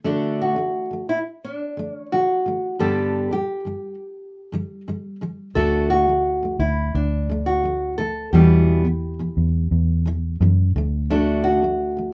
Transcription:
0.04 D3 A3 D4 F#4
0.42 F#4
0.56 D3 A3
0.91 D3 A3
1.09 E4
1.44 D4
1.77 D3 A3
1.93 C#4
2.12 D3 A3 F#4
2.46 D3 A3
2.79 G2 D3 G3 B3 D4 G4 A4
3.31 G2 D3 G3 G4
3.65 G2 D3 G3
4.52 G2 D3 G3
4.88 G2 D3 G3
5.21 G2 D3 G3
5.55 D2 D3 A3 D4 F#4 A4
5.90 F#4
6.08 D3 A3
6.43 D3 A3
6.59 D2 E4
6.95 D2 D4
7.30 D3 A3
7.46 F#4
7.63 D3 A3
7.98 D3 A3 A4
8.33 E2 B2 E3 G3 B3 G4
8.85 E2 B2 E3
9.19 E2 B2 E3
9.37 E2
9.71 E2
10.06 E2 B2 E3
10.41 E2 F#2 B2 E3
10.76 D2 D3 A3
11.10 D3 A3 D4 F#4
11.44 F#4
11.62 D3 A3
11.97 D3 A3

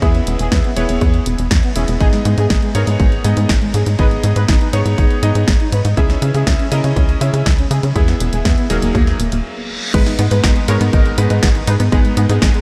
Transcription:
0.02 E2 B3 E4 G#4 E5, kick, closed hi-hat
0.15 B3, closed hi-hat
0.27 E1 B3, closed hi-hat
0.39 E1 G#4, closed hi-hat
0.52 E2 B3, kick, snare, closed hi-hat
0.64 B3, closed hi-hat
0.77 E1 B3 E4 G#4 B4 C#5, closed hi-hat
0.89 E1 B3, closed hi-hat
1.01 E2 B3, kick, closed hi-hat
1.14 closed hi-hat
1.26 E1 B3, closed hi-hat
1.39 E1 B3, closed hi-hat
1.51 E2, kick, snare, closed hi-hat
1.63 B3, closed hi-hat
1.76 E1 B3 C#4 E4 G#4 E5, closed hi-hat
1.88 E1 B3, closed hi-hat
2.00 G#1 B3 D#4 G#4 D#5, kick, closed hi-hat
2.13 G#3, snare, closed hi-hat
2.25 G#2 G#3, closed hi-hat
2.38 G#2 G#4, closed hi-hat
2.50 G#1 G#3, kick, snare, closed hi-hat
2.62 G#3, closed hi-hat
2.75 G#2 B3 D#4 G#4 A#4 C#5, closed hi-hat
2.87 G#2 G#3, closed hi-hat
3.00 G#1 G#3, kick, closed hi-hat
3.12 closed hi-hat
3.24 G#2 G#3 B3 D#4 G#4 D#5, closed hi-hat
3.37 G#2 G#3, closed hi-hat
3.49 G#1, kick, snare, closed hi-hat
3.62 G#3, closed hi-hat
3.74 G#2 G#4, closed hi-hat
3.86 G#2 G#3, closed hi-hat
3.99 G#1 B3 D#4 G#4 B4 D#5, kick, closed hi-hat
4.11 D#4, closed hi-hat
4.23 G#2 D#4, closed hi-hat
4.36 G#2 B4, closed hi-hat
4.48 G#1 D#4, kick, snare, closed hi-hat
4.61 D#4, closed hi-hat
4.73 G#2 B3 D#4 G#4 C#5, closed hi-hat
4.85 G#2 D#4, closed hi-hat
4.98 G#1 D#4, kick, closed hi-hat
5.10 closed hi-hat
5.23 G#2 B3 D#4 G#4 D#5, closed hi-hat
5.35 G#2 D#4, closed hi-hat
5.48 G#1, kick, snare, closed hi-hat
5.60 D#4, closed hi-hat
5.72 G#2 B4, closed hi-hat
5.85 G#2 D#4, closed hi-hat
5.97 C#2 C#4 E4 G#4 E5, kick, closed hi-hat
6.10 C#4, snare, closed hi-hat
6.22 C#3 C#4, closed hi-hat
6.34 C#3 G#4, closed hi-hat
6.47 C#2 C#4, kick, snare, closed hi-hat
6.59 C#4, closed hi-hat
6.72 C#3 C#4 E4 G#4 A#4 D#5, closed hi-hat
6.84 C#3 C#4, closed hi-hat
6.96 C#2 C#4, kick, closed hi-hat
7.09 closed hi-hat
7.21 C#3 C#4 E4 G#4 E5, closed hi-hat
7.33 C#3 C#4, closed hi-hat
7.46 C#2, kick, snare, closed hi-hat
7.59 C#4, closed hi-hat
7.71 C#3 G#4, closed hi-hat
7.83 C#3 C#4, closed hi-hat
7.95 E2 B3 E4 G#4 E5, kick, closed hi-hat
8.08 B3, snare, closed hi-hat
8.20 E1 B3, closed hi-hat
8.33 E1 G#4, closed hi-hat
8.45 E2 B3, kick, snare, closed hi-hat
8.58 B3, closed hi-hat
8.70 E1 F#3 A#3 D#4 G#4 A#4, closed hi-hat
8.82 E1 A#3, closed hi-hat
8.95 D#2 A#3, kick, closed hi-hat, reverse cymbal
9.07 snare, closed hi-hat
9.19 D#1 A#3, closed hi-hat
9.32 D#1 A#3, closed hi-hat
9.94 G#1 G#3 B3 D#4 G#4 B4, kick, closed hi-hat, crash
10.06 D#4, snare, closed hi-hat
10.19 G#2 B3 D#4, closed hi-hat
10.31 G#2 D#4 G#4 B4, closed hi-hat
10.43 G#1 B3 D#4, kick, snare, closed hi-hat
10.56 D#4, closed hi-hat
10.68 G#2 G#3 B3 D#4 A#4 C#5, closed hi-hat
10.81 G#2 B3 D#4, closed hi-hat
10.93 G#1 D#4, kick, closed hi-hat
11.06 closed hi-hat
11.18 G#2 G#3 B3 D#4 B4, closed hi-hat
11.30 G#2 G#3 D#4, closed hi-hat
11.43 G#1 B3, kick, snare, closed hi-hat
11.55 D#4, closed hi-hat
11.67 G#2 D#4 G#4 B4, closed hi-hat
11.80 G#2 B3 D#4, closed hi-hat
11.92 G#1 G#3 B3 D#4 G#4 B4, kick, closed hi-hat
12.05 G#3, closed hi-hat
12.17 G#2 G#3 B3, closed hi-hat
12.29 G#2 B3 D#4 G#4, closed hi-hat
12.42 G#1 G#3 B3, kick, snare, closed hi-hat
12.54 G#3, closed hi-hat

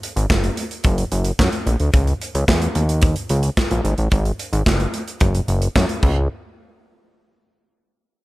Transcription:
0.03 closed hi-hat
0.16 G#1, closed hi-hat
0.30 F#1, kick, snare, clap
0.44 closed hi-hat
0.57 closed hi-hat
0.71 closed hi-hat
0.84 F#1, kick, closed hi-hat
0.98 closed hi-hat
1.12 F#1, closed hi-hat
1.25 closed hi-hat
1.39 F#2, kick, snare, clap
1.53 closed hi-hat
1.67 A#1, closed hi-hat
1.80 D2, closed hi-hat
1.94 C#2, kick, closed hi-hat
2.07 closed hi-hat
2.22 closed hi-hat
2.35 C#2, closed hi-hat
2.48 E2, kick, snare, clap
2.62 closed hi-hat
2.75 D#2, closed hi-hat
2.89 closed hi-hat
3.02 kick, closed hi-hat
3.16 closed hi-hat
3.29 C#2, closed hi-hat
3.43 closed hi-hat
3.57 kick, snare, clap
3.71 A#1, closed hi-hat
3.85 G#1, closed hi-hat
3.98 A1, closed hi-hat
4.12 G#1, kick, closed hi-hat
4.25 closed hi-hat
4.39 closed hi-hat
4.53 G#1, closed hi-hat
4.66 F#1, kick, snare, clap
4.80 closed hi-hat
4.94 closed hi-hat
5.08 closed hi-hat
5.20 F#1, kick, closed hi-hat
5.35 closed hi-hat
5.48 F#1, closed hi-hat
5.62 closed hi-hat
5.76 F#2, kick, snare, clap
5.89 closed hi-hat
6.03 C#2, kick, crash

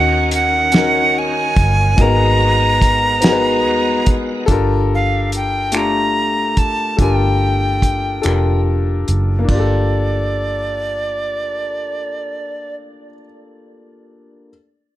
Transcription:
Already playing: D#2 D#3 C#4 D#4 F#4 A#4 F#5
0.31 F#5, closed hi-hat
0.72 C#4 D#4, snare, closed hi-hat
0.76 F#4 A#4
1.19 G#5
1.56 G1, kick, closed hi-hat
1.96 G#1 G#3 A#3 B3 D#4 F#4 G#4 A#5, kick, closed hi-hat
2.01 B3 A#4 A#5
2.82 kick, closed hi-hat
3.21 B3 D#4 F#4 G#4, snare, closed hi-hat
3.26 A#4
3.32 B4
3.66 D#2
4.06 F#1, kick, closed hi-hat
4.46 G1 D4 F4 G4 A4, kick, closed hi-hat
4.51 A#4
4.95 F5
5.32 G5, closed hi-hat
5.72 A3 D4 F4, finger snap, closed hi-hat
5.76 G4 A#5
6.57 A5, kick, closed hi-hat
6.97 G1 D4 F4 A4 G5, kick, closed hi-hat
7.01 G4 A#4
7.82 kick, closed hi-hat
8.22 F1 D4 F4 A4, closed hi-hat
8.26 G4 A#4, finger snap
9.08 F#1, closed hi-hat
9.39 A#3
9.44 D4
9.48 G1 F4 D5, kick, splash
9.54 G4
9.59 A4

